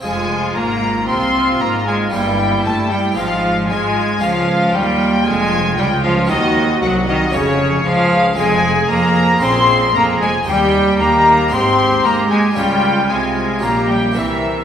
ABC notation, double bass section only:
X:1
M:4/4
L:1/8
Q:1/4=115
K:Fm
V:1 name="Double bass section" clef=bass
F,,,2 A,,,2 C,,2 A,,,2 | G,,,2 G,,2 A,,,2 A,,2 | D,,2 E,,2 F,,,2 D,,2 | E,,2 C,,2 F,,,2 D,,2 |
F,,,2 F,,2 B,,,2 F,,,2 | E,,2 E,,2 A,,,2 A,,2 | D,,2 C,,2 B,,,2 C,,2 |]